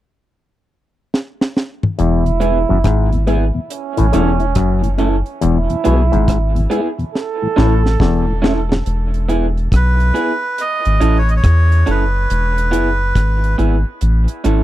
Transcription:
1.14 snare
1.41 snare
1.57 snare
1.83 mid tom
1.98 sub bass E1, clav E2, trombone E4, closed hi-hat
2.26 tonewheel organ E2 B2, closed hi-hat
2.40 tonewheel organ G#3 B3 E4, clean electric guitar B3 E4 G#4, closed hi-hat
2.69 sub bass F#1, tonewheel organ E2 B2, clav F#2
2.84 sub bass G#1, clav G#2, kick, cross-stick, closed hi-hat
3.12 tonewheel organ E2 B2, closed hi-hat
3.27 tonewheel organ G#3 B3 E4, clean electric guitar B3 E4 G#4, closed hi-hat
3.54 tonewheel organ E2 B2
3.70 trombone C#4, closed hi-hat
3.97 sub bass A1, clav A2, tonewheel organ A2 E3, closed hi-hat
4.12 sub bass E1, clav E2, tonewheel organ A3 C#4 E4, clean electric guitar C#4 E4 A4, cross-stick, closed hi-hat
4.40 tonewheel organ C#4 E4, closed hi-hat
4.55 sub bass F#1, clav F#2, kick, cross-stick, closed hi-hat
4.82 tonewheel organ A2 E3, closed hi-hat
4.98 tonewheel organ A3 C#4 E4, clean electric guitar C#4 E4 A4, closed hi-hat
5.26 closed hi-hat
5.41 sub bass E1, clav E2, trombone E4, closed hi-hat
5.70 tonewheel organ E2 B2, closed hi-hat
5.84 sub bass B1, clav B2, tonewheel organ G#3 B3 E4, clean electric guitar B3 E4 G#4, closed hi-hat
6.12 sub bass G#1, tonewheel organ E2 B2, clav G#2, closed hi-hat
6.28 kick, cross-stick, closed hi-hat
6.55 tonewheel organ E2 B2, closed hi-hat
6.70 tonewheel organ G#3 B3 E4, clean electric guitar B3 E4 G#4, closed hi-hat
6.99 tonewheel organ E2 B2, closed hi-hat
7.14 trombone A4, snare
7.42 tonewheel organ A2 E3
7.56 sub bass A1, clav A2, tonewheel organ A3 C#4 E4, clean electric guitar C#4 E4 A4, snare
7.84 tonewheel organ A2 E3, snare
8.00 sub bass E1, clav E2, kick, snare
8.27 tonewheel organ A2 E3
8.42 tonewheel organ A3 C#4 E4, clean electric guitar C#4 E4 A4, snare
8.69 tonewheel organ A2 E3, muted clean electric guitar stroke, snare
8.86 sub bass E1, closed hi-hat
9.14 closed hi-hat
9.28 clean electric guitar B3 E4 G#4, closed hi-hat
9.58 closed hi-hat
9.72 sub bass B1, kick, cross-stick, closed hi-hat
9.76 melodica B4
10.00 closed hi-hat
10.14 clean electric guitar B3 E4 G#4, closed hi-hat
10.58 melodica D#5, closed hi-hat
10.85 sub bass G#1, closed hi-hat
11.00 sub bass A1, clean electric guitar C#4 E4 A4, closed hi-hat
11.18 melodica C#5
11.29 melodica D#5, closed hi-hat
11.36 melodica C#5
11.44 sub bass E2, kick, cross-stick, closed hi-hat
11.72 closed hi-hat
11.86 sub bass F#1, clean electric guitar C#4 E4 A4, closed hi-hat
11.90 melodica B4
12.30 sub bass E1, closed hi-hat
12.58 closed hi-hat
12.71 sub bass F#1, clean electric guitar B3 E4 G#4, closed hi-hat
13.15 sub bass G#1, kick, cross-stick, closed hi-hat
13.44 closed hi-hat
13.58 sub bass G#1, clean electric guitar B3 E4 G#4, closed hi-hat
14.01 sub bass A1, closed hi-hat
14.28 closed hi-hat
14.44 sub bass G#1, clean electric guitar C#4 E4 A4, cross-stick, closed hi-hat

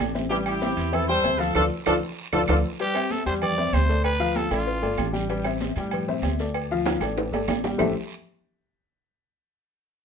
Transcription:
Already playing: upright piano A3 A4 D5
0.00 upright bass A1, cowbell, high conga, low timbale, low agogo
0.15 upright piano C4 C5 E5, high conga, short guiro
0.30 upright piano G3 G4 G5, horn section E4 G4, cowbell, high conga, low agogo, long guiro
0.46 horn section E4 G4, cowbell, high conga, low agogo, claves
0.61 upright piano C4 C5 E5, cowbell, high conga, short guiro
0.77 upright bass E2, cowbell, low agogo, short guiro
0.92 upright piano C4 C5 E5, horn section E4 A4, cowbell, high conga, low conga, low agogo, long guiro, claves
1.08 upright piano G3 G4 G5, horn section A4 C5, high conga
1.24 upright bass D2, upright piano C4 C5 E5, cowbell, high conga, low agogo, short guiro
1.39 upright piano F3 F4 F5, horn section F4 A4, cowbell, high conga, short guiro
1.55 upright bass D2, horn section D4 F4 A4, upright piano F4 A4 D5, cowbell, low conga, high timbale, long guiro, claves
1.86 upright bass D2, horn section D4 F4 A4, upright piano F4 A4 D5, cowbell, low conga, high timbale, long guiro, claves
2.33 upright bass D2, horn section D4 F4 A4, upright piano F4 A4 D5, cowbell, low conga, high timbale, long guiro, claves
2.48 upright bass D2, horn section D4 F4 A4, upright piano F4 A4 D5, cowbell, low conga, high timbale, long guiro, claves
2.80 upright piano G3 G4 G5, trumpet G4, cowbell, high conga, low agogo, long guiro
2.94 upright piano C4 C5 E5, cowbell, high conga, low agogo, claves
3.11 trumpet A4, cowbell, high conga, short guiro
3.26 upright bass E2, upright piano G3 G4 G5, trumpet C5, cowbell, low agogo, short guiro
3.42 trumpet D5, cowbell, high conga, low conga, low agogo, long guiro, claves
3.58 upright piano C4 C5 E5, high conga, low conga
3.73 upright bass D2, trumpet C5, cowbell, high conga, low timbale, low agogo, short guiro
3.89 upright piano A3 A4 D5, cowbell, high conga, short guiro
4.04 trumpet B4, cowbell, high conga, low agogo, long guiro, claves
4.20 upright piano F3 F4 F5, high conga
4.35 trumpet A4, cowbell, high conga, low agogo, short guiro
4.50 upright bass A1, upright piano A3 A4 D5, trumpet F4, cowbell, high conga, low agogo, short guiro, claves
4.67 cowbell, long guiro
4.82 upright bass G1, upright piano A3 A4 D5, high conga, low agogo
4.98 upright bass A1, cowbell, high conga, low timbale, low agogo, short guiro, claves
5.13 upright piano G3 G4 G5, high conga, short guiro
5.29 upright piano G3 G4 G5, cowbell, high conga, low agogo, long guiro
5.44 upright piano C4 C5 E5, cowbell, high conga, low agogo, claves
5.60 cowbell, high conga, short guiro
5.76 upright bass A2, upright piano G3 G4 G5, cowbell, low agogo, short guiro
5.91 cowbell, high conga, low conga, low agogo, long guiro, claves
6.08 upright piano C4 C5 E5, high conga, low conga
6.22 upright bass D2, cowbell, high conga, low timbale, low agogo, short guiro
6.39 upright piano A3 A4 D5, cowbell, high conga, short guiro
6.54 cowbell, high conga, low agogo, long guiro, claves
6.70 upright piano F3 F4 F5, high conga
6.86 cowbell, high bongo, high conga, high timbale, low agogo, short guiro
7.00 upright bass A1, upright piano A3 A4 D5, cowbell, high bongo, high conga, low agogo, short guiro, claves
7.17 cowbell, high bongo, high conga, high timbale, long guiro
7.32 upright bass G1, upright piano A3 A4 D5, high conga, low timbale, low agogo
7.48 upright bass A1, cowbell, low bongo, high conga, low timbale, low agogo, short guiro, claves
7.64 upright piano G3 G4 G5, low bongo, high conga, low timbale, short guiro
7.78 upright bass A1, upright piano A3 E4 G4 A4 C5 E5, low bongo, low conga, low timbale, long guiro, claves

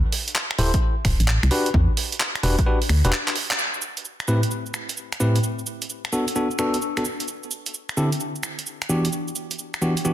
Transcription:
0.12 open hi-hat
0.28 closed hi-hat
0.35 clap
0.51 finger snap
0.59 fm bass D1, tine electric piano E4 G4 A4 C5, open hi-hat
0.74 kick, closed hi-hat
1.05 fm bass D1, finger snap, kick, open hi-hat
1.20 fm bass A1, closed hi-hat
1.28 clap
1.43 fm bass C2, finger snap, closed hi-hat
1.51 tine electric piano D4 F#4 G4 B4, open hi-hat
1.66 closed hi-hat
1.74 fm bass E2, kick
1.97 open hi-hat
2.12 closed hi-hat
2.20 clap
2.35 finger snap, closed hi-hat
2.43 fm bass E1, tine electric piano D4 F#4 G4 B4, open hi-hat
2.59 kick, closed hi-hat
2.66 tine electric piano D4 F#4 G4 B4
2.82 open hi-hat
2.89 fm bass D2, finger snap, open hi-hat
3.05 fm bass E1, tine electric piano D4 F#4 G4 B4, closed hi-hat
3.12 clap
3.28 clap, closed hi-hat
3.36 open hi-hat
3.51 clap, closed hi-hat
3.59 shaker
3.74 shaker
3.82 shaker
3.97 closed hi-hat, shaker
4.05 shaker
4.20 finger snap, shaker
4.28 tine electric piano A2 C4 E4 G4 B4, shaker
4.43 closed hi-hat, shaker
4.51 shaker
4.66 shaker
4.74 finger snap, shaker
4.89 closed hi-hat, shaker
4.97 shaker
5.12 finger snap, closed hi-hat, shaker
5.20 tine electric piano A2 C4 E4 G4 B4, shaker
5.36 closed hi-hat, shaker
5.44 shaker
5.59 shaker
5.67 shaker
5.82 closed hi-hat, shaker
5.90 shaker
6.05 finger snap, shaker
6.13 tine electric piano B3 D4 F#4 A4, shaker
6.28 closed hi-hat, shaker
6.36 tine electric piano B3 D4 F#4 A4, shaker
6.51 shaker
6.59 tine electric piano B3 D4 F#4 A4, finger snap, shaker
6.74 closed hi-hat, shaker
6.82 shaker
6.97 tine electric piano B3 D4 F#4 A4, finger snap, closed hi-hat, shaker
7.05 shaker
7.20 closed hi-hat, shaker
7.28 shaker
7.43 shaker
7.51 shaker
7.66 closed hi-hat, shaker
7.74 shaker
7.89 finger snap, shaker
7.97 tine electric piano D3 C4 E4 G4 A4, shaker
8.12 closed hi-hat, shaker
8.20 shaker
8.35 shaker
8.43 finger snap, shaker
8.59 closed hi-hat, shaker
8.66 shaker
8.82 finger snap, closed hi-hat, shaker
8.89 tine electric piano E3 B3 D4 F#4 G4, shaker
9.05 closed hi-hat, shaker
9.13 shaker
9.28 shaker
9.36 shaker
9.51 closed hi-hat, shaker
9.59 shaker
9.74 finger snap, shaker
9.82 tine electric piano E3 B3 D4 F#4 G4, shaker
9.97 closed hi-hat, shaker
10.05 tine electric piano E3 B3 D4 F#4 G4, shaker

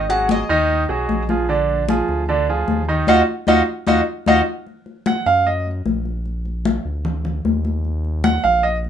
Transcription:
Already playing: analog synth bass G#1
0.09 grand piano F#3 F#4 G#4, cuban tres F#5, high conga
0.29 cuban tres D#5, high conga
0.49 analog synth bass D#2, grand piano D#3 D#4 D#5, high conga
0.69 high conga
0.89 analog synth bass B1, grand piano F#3 F#4 G#4, high conga
1.09 analog synth bass A#1, high conga
1.29 grand piano F3 F4 G#4, high conga
1.49 grand piano D3 D4 D5, high conga
1.69 high conga
1.89 grand piano F3 F4 G#4, high conga
2.09 analog synth bass D2, high conga
2.29 grand piano D3 D4 D5, high conga
2.48 grand piano F3 F4 G#4, high conga
2.68 analog synth bass D#2, high conga
2.88 grand piano D#3 D#4 D#5
3.07 analog synth bass D#2, grand piano D#4 F4 F#4, cuban tres D#5 F5 F#5, high conga
3.47 analog synth bass D#2, grand piano D#4 F4 F#4, cuban tres D#5 F5 F#5, high conga
3.87 analog synth bass D#2, grand piano D#4 F4 F#4, cuban tres D#5 F5 F#5, high conga
4.26 analog synth bass D#2, grand piano D#4 F4 F#4, cuban tres D#5 F5 F#5, high conga
4.67 high conga
4.86 high conga
5.06 grand piano F#5, high conga
5.26 analog synth bass F#2, grand piano F5, high conga
5.45 grand piano D#5, high conga
5.66 high conga
5.86 analog synth bass A#1, high conga
6.06 high conga
6.25 high conga
6.45 high conga
6.65 high conga
6.85 analog synth bass D2
7.05 high conga, low conga
7.25 high conga, low conga
7.45 analog synth bass D#2, high conga
7.65 high conga
7.85 high conga
8.05 high conga
8.24 grand piano F#5, high conga
8.44 analog synth bass A#1, grand piano F5, high conga
8.63 grand piano D#5, high conga
8.84 high conga

